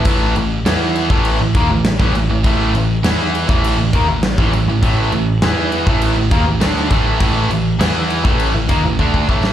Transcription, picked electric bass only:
0.06 A1
0.37 A1
0.66 E2
1.10 A1
1.40 A1
1.55 D#2
1.69 A1
2.00 A1
2.14 A1
2.30 A1
2.44 A1
2.74 A1
3.04 E2
3.49 A1
3.77 A1
3.93 D#2
4.07 A1
4.38 A1
4.53 A1
4.67 A1
4.83 A1
5.12 A1
5.41 E2
5.87 A1
6.16 A1
6.32 D#2
6.45 A1
6.60 D2
6.91 A1
7.21 A1
7.50 A1
7.79 E2
8.25 A1
8.54 A1
8.69 D#2
8.85 A1
8.99 D2
9.29 A1

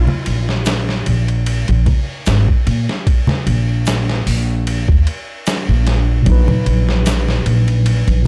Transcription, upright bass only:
0.27 A#1
1.07 A#1
1.69 A#1
2.27 G#1
2.67 A#2
3.47 A#1
4.26 A#1
4.89 D#2
5.69 A#1
6.27 A#1
6.66 A#1
7.46 A#1
8.08 A#1

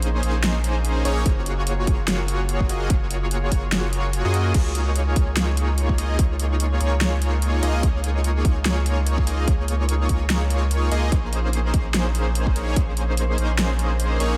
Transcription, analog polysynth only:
Already playing: A#3 C#4 D#4 G#4 C5
0.23 A#3 C#4 D#4 G#4 C5
1.05 A#3 C#4 D#4 G#4 C#5
1.26 A#3 F4 F#4 G#4 C#5
1.87 A#3 F4 F#4 G#4 C#5
2.69 A#3 F4 F#4 G#4 D#5
2.90 A#3 F4 F#4 G#4 C#5
3.52 A#3 F4 F#4 G#4 C#5
4.25 A#3 F4 F#4 G#4 D#5
4.54 A#3 D#4 F4 G#4 C#5
5.16 A#3 D#4 F4 G#4 C#5
5.98 A#3 D#4 F4 G#4 D#5
6.19 A#3 D#4 F4 G#4 C#5
6.80 A#3 D#4 F4 G#4 C#5
7.63 A#3 D#4 F4 G#4 D#5
7.83 A#3 D#4 F4 G#4 C#5
8.45 A#3 D#4 F4 G#4 C#5
9.27 A#3 D#4 F4 G#4 D#5
9.48 A#3 D#4 F4 G#4 C#5
10.09 A#3 D#4 F4 G#4 C#5
10.91 A#3 D#4 F4 G#4 D#5
11.12 A#3 C#4 D#4 G#4 C5
11.74 A#3 C#4 D#4 G#4 C5
12.56 A#3 C#4 D#4 G#4 C#5
12.76 A#3 C#4 D#4 G#4 C5
13.38 A#3 C#4 D#4 G#4 C5
14.20 A#3 C#4 D#4 G#4 C#5

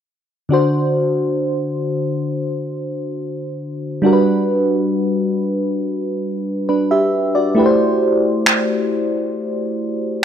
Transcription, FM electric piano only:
0.49 D3 D4 F#4
0.53 C5
4.02 G3 D4 F#4
4.06 A#4
4.13 B4
6.69 D4 B4
6.91 G4 E5
7.35 F#4 D5
7.55 A3 E4 G4
7.59 B4
7.66 C5

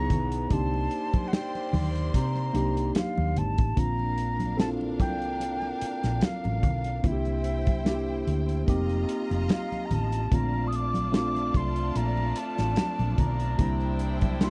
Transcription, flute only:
Already playing: A#5
0.53 A5
1.28 F#5
1.33 G5
2.15 A#5
2.98 F5
3.38 A5
3.79 A#5
4.60 A5
5.01 G5
6.25 F5
7.07 E5
9.53 F5
9.86 A#5
9.94 A5
10.35 A#5
10.68 D#6
10.76 D6
11.16 D6
11.57 C6
11.97 A#5
12.38 A5
13.20 A#5
14.43 C6

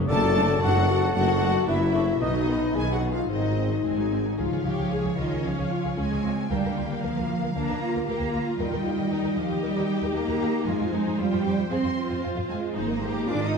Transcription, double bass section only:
0.09 F#1
0.62 F#1
1.14 F#1
1.67 F#1
2.21 B1
2.74 B1
3.29 G#1
3.84 G#1
4.39 C#2
4.52 C#2
4.65 C#2
4.79 C#2
4.92 C#2
5.05 C#2
5.18 C#2
5.32 C#2
5.45 C#2
5.59 C#2
5.85 C#2
5.99 C#2
6.12 C#2
6.25 C#2
6.50 D2
6.64 D2
6.78 D2
6.91 D2
7.03 D2
7.17 D2
7.30 D2
7.43 D2
7.56 D2
7.69 D2
7.95 D2
8.07 D2
8.20 D2
8.33 D2
8.59 D#2
8.71 D#2
8.84 D#2
8.97 D#2
9.10 D#2
9.23 D#2
9.36 D#2
9.50 D#2
9.63 D#2
9.76 D#2
10.02 D#2
10.14 D#2
10.27 D#2
10.40 D#2
10.66 F2
10.80 F2
10.93 F2
11.06 F2
11.19 F2
11.32 F2
11.45 F2
11.58 F2
11.71 F2
11.84 F2
12.10 F2
12.24 F2
12.36 F2
12.49 F2
12.75 G#1
13.29 G#1

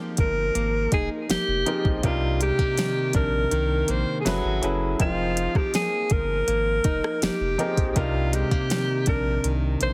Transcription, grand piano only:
Already playing: F3 G#3 C4 D#4 G4 A#4
1.66 F3 C4 D#4 G4 G#4 A#4
2.03 C3 G3 D4 D#4 A#4
4.25 F#3 C#4 E4 G#4 A4 B4
4.62 F#3 C#4 E4 G#4 A4 B4
4.99 F3 C4 D#4 G#4 A#4 G5
7.58 F3 C4 D#4 G4 G#4 A#4
7.95 C3 G3 D4 D#4 A#4

